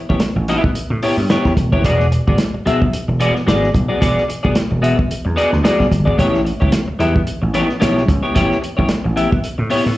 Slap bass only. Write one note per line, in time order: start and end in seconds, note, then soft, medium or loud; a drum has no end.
0.10 0.19 A1 medium
0.20 muted slap bass stroke medium
0.36 0.57 A1 medium
0.75 muted slap bass stroke medium
0.90 1.00 A2 loud
1.17 1.27 G2 medium
1.45 1.55 E2 medium
1.57 1.69 E1 medium
1.73 1.85 D#1 loud
1.85 2.17 E1 medium
2.27 2.36 G#1 medium
2.54 muted slap bass stroke soft
2.66 2.87 B1 medium
2.93 muted slap bass stroke medium
3.08 3.29 E1 medium
3.47 3.68 G#1 loud
3.74 3.86 B1 loud
4.02 4.13 E1 medium
4.45 4.54 E1 medium
4.56 muted slap bass stroke medium
4.71 4.92 E1 medium
5.11 muted slap bass stroke medium
5.26 5.35 E2 medium
5.53 5.62 D2 medium
5.80 5.89 B1 medium
5.91 6.07 G1 loud
6.07 6.16 G#1 medium
6.19 6.51 A1 loud
6.62 6.71 C#2 medium
6.88 muted slap bass stroke soft
7.00 7.21 E2 medium
7.28 muted slap bass stroke medium
7.42 7.63 A1 medium
7.82 8.02 B1 loud
8.08 8.20 C#2 medium
8.36 8.47 A1 loud
8.79 8.88 A1 loud
8.90 muted slap bass stroke medium
9.05 9.26 A1 medium
9.59 9.68 A2 loud
9.86 9.95 A2 medium